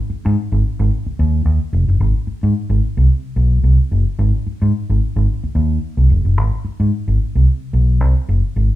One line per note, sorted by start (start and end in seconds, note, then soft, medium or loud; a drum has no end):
0.10 muted fingered electric bass stroke soft
0.26 0.35 G#2 loud
0.52 0.61 G#1 medium
0.80 0.89 G#1 loud
1.06 muted fingered electric bass stroke soft
1.19 1.41 D#2 loud
1.45 1.58 D#2 medium
1.73 1.85 F1 medium
1.88 1.98 F#1 medium
2.00 2.12 G#1 medium
2.27 muted fingered electric bass stroke soft
2.43 2.52 G#2 medium
2.70 2.79 G#1 medium
2.97 3.07 C2 medium
3.36 3.58 B1 medium
3.64 3.76 C2 medium
3.92 4.04 F#1 medium
4.19 4.31 G#1 loud
4.47 muted fingered electric bass stroke soft
4.62 4.71 G#2 loud
4.90 4.99 G#1 medium
5.16 5.26 G#1 medium
5.44 muted fingered electric bass stroke soft
5.55 5.77 D#2 medium
5.97 6.07 C2 medium
6.10 6.22 F1 medium
6.25 6.37 F#1 medium
6.37 6.50 G#1 loud
6.65 muted fingered electric bass stroke soft
6.80 6.90 G#2 medium
7.08 7.17 G#1 medium
7.35 7.45 C2 medium
7.73 8.00 B1 medium
8.00 8.13 C2 medium
8.29 8.41 F#1 medium
8.56 8.69 G#1 loud